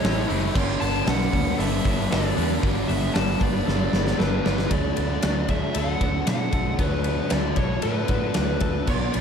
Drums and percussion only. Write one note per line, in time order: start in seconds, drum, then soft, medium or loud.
0.04 snare loud
0.04 open hi-hat medium
0.30 open hi-hat medium
0.55 kick loud
0.55 crash loud
0.81 open hi-hat medium
1.07 snare loud
1.07 open hi-hat medium
1.22 snare soft
1.33 kick medium
1.33 open hi-hat medium
1.60 open hi-hat medium
1.85 kick medium
1.85 open hi-hat medium
2.12 snare loud
2.12 open hi-hat medium
2.38 open hi-hat medium
2.63 kick loud
2.63 open hi-hat medium
2.89 open hi-hat medium
3.15 snare loud
3.15 open hi-hat medium
3.41 kick medium
3.41 open hi-hat medium
3.68 snare medium
3.93 snare medium
4.07 snare medium
4.20 snare medium
4.46 snare loud
4.58 snare medium
4.71 kick loud
4.71 ride medium
4.97 ride medium
5.23 snare loud
5.23 ride loud
5.48 kick medium
5.48 ride medium
5.75 ride loud
6.01 kick medium
6.01 ride medium
6.27 snare loud
6.27 ride medium
6.52 kick medium
6.52 ride medium
6.79 kick loud
6.79 ride medium
7.04 ride medium
7.30 snare loud
7.30 ride medium
7.56 kick medium
7.56 ride medium
7.82 ride medium
8.08 kick medium
8.08 ride medium
8.34 snare loud
8.34 ride medium
8.60 kick medium
8.60 ride medium
8.87 kick loud
8.87 crash medium
9.14 ride medium